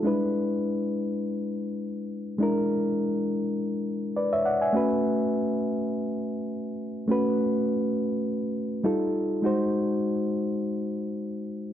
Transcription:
0.03 2.35 G#3 medium
0.03 2.35 D4 medium
0.03 2.36 E4 medium
0.03 2.37 B4 medium
2.39 4.70 G#3 medium
2.39 4.71 D4 medium
2.39 4.71 E4 medium
2.43 4.14 A#4 medium
4.17 4.32 B4 soft
4.17 4.31 D5 medium
4.33 4.45 C#5 medium
4.33 4.45 E5 medium
4.45 4.61 D5 medium
4.45 4.60 F#5 medium
4.62 4.89 E5 medium
4.62 4.89 G#5 medium
4.73 7.04 A3 medium
4.73 7.05 C#4 medium
4.73 7.05 F#4 medium
4.73 7.06 B4 medium
7.08 8.81 A3 medium
7.08 8.81 C#4 medium
7.08 8.82 F#4 medium
7.08 8.83 B4 medium
8.84 9.43 G3 medium
8.84 9.43 D#4 medium
8.84 9.43 F4 medium
8.84 9.44 A4 medium
9.42 11.73 G#3 medium
9.42 11.73 D#4 medium
9.42 11.73 F#4 medium
9.42 11.73 C5 medium

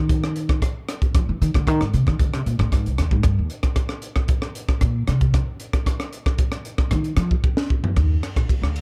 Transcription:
0.00 0.58 D#3 medium
0.09 kick loud
0.09 closed hi-hat medium
0.24 cross-stick medium
0.36 closed hi-hat medium
0.49 kick medium
0.49 cross-stick medium
0.62 kick medium
0.62 cross-stick medium
0.62 closed hi-hat medium
0.89 cross-stick medium
0.89 closed hi-hat medium
1.02 kick medium
1.02 closed hi-hat soft
1.15 1.28 F3 medium
1.15 kick loud
1.15 cross-stick medium
1.15 closed hi-hat medium
1.29 1.41 E3 medium
1.41 1.54 D#3 medium
1.41 closed hi-hat medium
1.54 1.68 D3 medium
1.54 kick medium
1.54 cross-stick medium
1.54 closed hi-hat soft
1.67 1.80 D#3 medium
1.67 kick medium
1.67 cross-stick medium
1.67 closed hi-hat medium
1.81 1.93 G#2 medium
1.81 cross-stick medium
1.81 closed hi-hat soft
1.94 2.06 C3 medium
1.94 closed hi-hat medium
2.07 2.19 D#3 medium
2.07 kick medium
2.07 cross-stick medium
2.19 2.34 D3 medium
2.19 kick loud
2.19 closed hi-hat medium
2.34 2.46 C3 medium
2.34 cross-stick medium
2.34 closed hi-hat soft
2.46 2.59 A#2 medium
2.46 closed hi-hat medium
2.59 2.72 A2 medium
2.59 kick medium
2.59 cross-stick medium
2.72 2.86 G#2 medium
2.72 kick medium
2.72 cross-stick medium
2.72 closed hi-hat medium
2.86 2.98 C2 soft
2.86 closed hi-hat soft
2.98 3.11 D#2 medium
2.98 cross-stick medium
2.98 closed hi-hat medium
3.11 3.24 G#2 medium
3.11 kick medium
3.23 3.38 G2 medium
3.23 kick loud
3.23 cross-stick medium
3.23 closed hi-hat medium
3.39 3.46 D#2 medium
3.50 closed hi-hat medium
3.63 kick medium
3.63 cross-stick medium
3.63 closed hi-hat soft
3.76 kick medium
3.76 cross-stick medium
3.76 closed hi-hat medium
3.89 cross-stick medium
4.02 closed hi-hat medium
4.16 kick medium
4.16 cross-stick medium
4.28 kick loud
4.28 closed hi-hat medium
4.42 cross-stick medium
4.55 closed hi-hat medium
4.69 kick medium
4.69 cross-stick medium
4.81 5.08 A#2 medium
4.81 kick medium
4.81 cross-stick medium
4.81 closed hi-hat medium
5.07 5.33 C3 medium
5.07 cross-stick medium
5.07 closed hi-hat medium
5.21 kick medium
5.21 closed hi-hat soft
5.34 kick loud
5.34 cross-stick medium
5.34 closed hi-hat medium
5.60 closed hi-hat medium
5.73 kick medium
5.73 cross-stick medium
5.73 closed hi-hat soft
5.86 kick medium
5.86 cross-stick medium
5.86 closed hi-hat medium
6.00 cross-stick medium
6.00 closed hi-hat soft
6.13 closed hi-hat medium
6.26 kick medium
6.26 cross-stick medium
6.38 kick loud
6.38 closed hi-hat medium
6.52 cross-stick medium
6.52 closed hi-hat soft
6.65 closed hi-hat medium
6.78 kick medium
6.78 cross-stick medium
6.91 7.16 D#3 medium
6.91 kick medium
6.91 cross-stick medium
6.91 closed hi-hat medium
7.04 closed hi-hat soft
7.17 7.33 F3 medium
7.17 cross-stick medium
7.17 closed hi-hat medium
7.31 kick medium
7.44 kick loud
7.57 snare medium
7.70 kick medium
7.84 floor tom medium
7.97 8.16 D#2 medium
7.97 kick medium
7.97 cross-stick medium
7.97 ride medium
8.23 cross-stick medium
8.23 ride medium
8.36 8.46 A#1 medium
8.36 kick medium
8.36 cross-stick medium
8.36 ride medium
8.49 muted upright bass stroke soft
8.49 kick medium
8.49 ride medium
8.62 8.81 D2 medium
8.62 cross-stick medium
8.76 ride medium

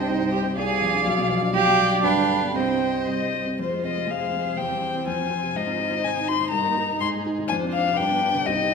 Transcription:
0.00 0.09 C2 medium
0.00 0.21 G2 soft
0.00 0.32 G3 soft
0.00 0.16 C4 soft
0.00 0.53 C5 medium
0.00 0.53 D#5 soft
0.00 0.54 G5 medium
0.08 0.56 C2 medium
0.08 0.31 D#4 medium
0.21 0.40 G2 soft
0.32 0.52 G3 medium
0.32 0.40 G4 medium
0.45 0.57 C4 soft
0.56 1.04 C2 medium
0.56 1.28 G#4 loud
0.56 1.50 D5 medium
0.56 1.50 F5 medium
0.56 1.03 G#5 medium
0.69 0.89 C3 soft
0.82 1.01 F3 medium
0.94 1.06 D4 medium
1.05 1.52 B1 medium
1.05 1.52 F5 medium
1.18 1.37 B2 soft
1.29 1.49 F3 medium
1.42 1.54 D4 soft
1.54 2.02 B1 medium
1.54 2.00 G4 loud
1.54 2.05 D5 medium
1.54 2.00 F5 medium
1.54 2.01 G5 medium
1.68 1.87 B2 soft
1.80 1.99 G3 soft
1.92 2.04 D4 soft
2.03 2.53 G2 medium
2.03 2.53 D4 medium
2.03 2.57 B4 medium
2.03 2.57 F5 medium
2.03 2.54 G5 medium
2.17 2.37 D3 soft
2.30 2.50 G3 soft
2.43 2.55 B3 soft
2.55 3.05 C2 medium
2.55 3.06 C4 medium
2.55 3.38 C5 medium
2.55 3.38 D#5 soft
2.55 3.07 G5 soft
2.69 2.89 G2 soft
2.82 3.02 G3 soft
2.94 3.15 C4 soft
3.07 3.57 C2 soft
3.07 3.56 D#5 medium
3.21 3.41 G2 soft
3.46 3.59 C4 soft
3.58 4.07 F2 soft
3.58 4.54 G#3 soft
3.58 4.09 F4 soft
3.58 5.51 C5 soft
3.58 3.85 C5 soft
3.72 3.91 G#3 soft
3.84 4.03 C4 soft
3.84 4.12 D#5 medium
3.97 4.16 C3 soft
4.08 4.56 F2 soft
4.08 4.61 G#4 soft
4.08 4.59 F5 medium
4.20 4.40 G#3 soft
4.32 4.52 C4 soft
4.46 4.58 C3 soft
4.57 5.05 E2 soft
4.57 5.51 C4 soft
4.57 5.07 G4 medium
4.57 5.06 G5 medium
4.70 4.89 G3 soft
4.81 5.01 C4 soft
4.94 5.06 E3 soft
5.07 5.54 F2 soft
5.07 6.02 F4 soft
5.07 5.58 G#5 medium
5.19 5.38 C4 soft
5.30 5.50 F4 soft
5.42 5.55 C3 soft
5.54 6.02 G#2 soft
5.54 7.46 D#4 soft
5.54 6.48 C5 soft
5.54 6.06 D#5 medium
5.66 5.86 C4 soft
5.79 5.99 D#4 soft
5.90 6.10 D#3 soft
6.04 6.51 G#2 soft
6.04 6.52 D#4 medium
6.04 6.30 G#5 medium
6.16 6.35 C4 soft
6.28 6.48 D#4 soft
6.28 6.50 C6 medium
6.41 6.52 D#3 soft
6.50 6.99 G2 medium
6.50 7.48 D#4 medium
6.50 6.98 A#4 soft
6.50 6.99 A#5 medium
6.66 6.85 A#3 soft
6.77 6.96 D#4 soft
6.89 7.01 G3 soft
7.00 7.47 G#2 medium
7.00 7.46 G#4 soft
7.00 7.09 C6 medium
7.13 7.32 G#3 soft
7.26 7.45 D#4 soft
7.39 7.50 D#3 soft
7.48 7.97 F2 soft
7.48 8.43 D4 medium
7.48 8.00 F4 medium
7.48 7.95 C5 medium
7.48 7.56 G#5 medium
7.63 7.81 C4 soft
7.73 7.94 D4 soft
7.73 7.99 F5 medium
7.88 7.99 C3 soft
7.97 8.46 G2 medium
7.97 8.48 D4 medium
7.97 8.43 B4 medium
7.97 8.48 G5 medium
8.11 8.30 B3 soft
8.23 8.42 D4 soft
8.35 8.47 D3 soft
8.46 8.74 C2 medium
8.46 8.74 C4 medium
8.46 8.74 D#4 medium
8.46 8.74 G4 soft
8.46 8.74 D#5 medium
8.59 8.74 C4 soft

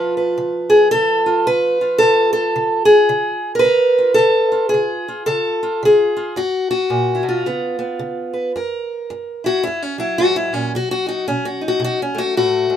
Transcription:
0.00 0.35 C#3 medium
0.00 3.36 F3 medium
0.00 1.26 F4 soft
0.00 0.17 B4 medium
0.17 1.46 B4 soft
0.38 0.88 C#3 medium
0.70 0.91 G#4 medium
0.91 1.43 C#3 medium
0.91 1.46 A4 loud
1.26 1.81 F4 soft
1.47 1.97 C#3 medium
1.47 2.55 B4 medium
1.81 3.62 F4 soft
1.98 2.32 A4 loud
2.02 2.51 C#3 medium
2.33 2.85 A4 medium
2.56 3.05 C#3 medium
2.85 3.55 G#4 medium
3.09 3.59 C#3 medium
3.55 4.14 A#4 medium
3.59 4.70 B4 loud
3.64 4.14 C#3 medium
3.98 4.16 F4 soft
4.14 4.69 A4 loud
4.18 4.68 C#3 medium
4.52 5.05 F4 soft
4.69 5.25 G#4 medium
4.74 5.23 C#3 medium
5.08 5.61 F4 soft
5.26 5.77 C#3 medium
5.26 5.80 A4 loud
5.63 6.15 F4 soft
5.83 6.32 C#3 medium
5.83 6.37 G#4 medium
6.17 6.34 F4 soft
6.36 6.86 F#2 medium
6.36 6.69 F#4 medium
6.71 7.45 F#4 medium
6.90 7.23 A#2 medium
7.15 7.23 E4 medium
7.23 7.44 B2 medium
7.29 8.56 F4 medium
7.46 7.95 C#3 medium
7.46 7.78 B3 soft
7.79 8.51 B3 soft
7.99 8.49 C#3 medium
8.33 8.51 B4 soft
8.56 9.04 F#2 medium
8.56 9.46 A#4 soft
9.10 9.59 F#2 medium
9.44 9.62 E4 soft
9.44 9.63 F#4 loud
9.63 10.15 F#2 medium
9.63 9.82 E4 medium
9.82 9.99 C#4 medium
9.98 12.73 F#3 soft
9.98 10.17 E4 medium
10.18 10.51 G#2 medium
10.18 10.35 F#4 medium
10.36 10.53 E4 medium
10.53 10.73 A#2 medium
10.53 10.71 C#4 medium
10.75 11.23 B2 medium
10.75 10.90 F#4 medium
10.91 11.07 F#4 medium
11.06 11.27 D#4 soft
11.06 11.26 F#4 medium
11.28 11.77 B2 medium
11.28 11.45 C#4 medium
11.45 11.63 F#4 medium
11.61 11.99 D#4 soft
11.68 11.83 F#4 medium
11.80 12.30 B2 medium
11.84 12.00 F#4 loud
12.02 12.18 C#4 medium
12.15 12.77 A3 soft
12.15 12.35 F#4 medium
12.37 12.69 A2 medium
12.37 12.77 F#4 loud
12.70 12.77 G#2 medium

